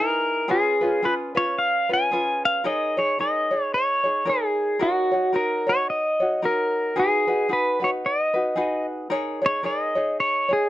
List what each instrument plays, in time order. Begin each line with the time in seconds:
Already playing: ukulele D#4 E4 G#4 B4, pedal steel guitar A#4
0.48 ukulele C#4 F4 G#4 B4, pedal steel guitar G#4
0.81 ukulele C#4 F4 B4
1.02 ukulele C#4 F4 G#4 B4, pedal steel guitar B4
1.35 ukulele C#4 F4 B4, pedal steel guitar C#5
1.59 pedal steel guitar F5
1.89 ukulele C#4 F4 B4
1.93 pedal steel guitar G#5
2.11 ukulele C#4 F4 G#4 B4
2.45 pedal steel guitar F5
2.64 ukulele D#4 G#4 A#4 C#5, pedal steel guitar D#5
2.97 ukulele D#4 G#4 C#5, pedal steel guitar C#5
3.19 ukulele D#4 G#4 A#4 C#5, pedal steel guitar D#5
3.51 ukulele D#4 G#4 C#5
3.64 pedal steel guitar C#5
3.74 pedal steel guitar C#5
4.04 ukulele D#4 G#4 C#5
4.25 ukulele D#4 G#4 A#4 C#5
4.30 pedal steel guitar G#4
4.79 ukulele D#4 F#4 A#4 C#5, pedal steel guitar F#4
5.11 ukulele D#4 F#4 C#5
5.33 ukulele D#4 F#4 A#4 C#5, pedal steel guitar A#4
5.67 ukulele D#4 F#4 C#5, pedal steel guitar C#5
5.90 pedal steel guitar D#5
6.20 ukulele D#4 F#4 C#5
6.42 ukulele D#4 F#4 A#4 C#5, pedal steel guitar A#4
6.96 ukulele D#4 F#4 G#4 B4, pedal steel guitar G#4
7.27 ukulele D#4 F#4 B4
7.49 ukulele D#4 F#4 G#4 B4
7.53 pedal steel guitar B4
7.80 ukulele D#4 F#4 B4
7.84 pedal steel guitar C#5
8.06 pedal steel guitar D#5
8.34 ukulele D#4 F#4 B4
8.56 ukulele D#4 F#4 G#4 B4
9.10 ukulele D#4 G#4 A#4 C#5
9.42 ukulele D#4 G#4 C#5
9.46 pedal steel guitar C#5
9.63 ukulele D#4 G#4 A#4 C#5, pedal steel guitar D#5
9.95 ukulele D#4 G#4 C#5
10.20 pedal steel guitar C#5
10.49 ukulele D#4 G#4 C#5
10.53 pedal steel guitar G#4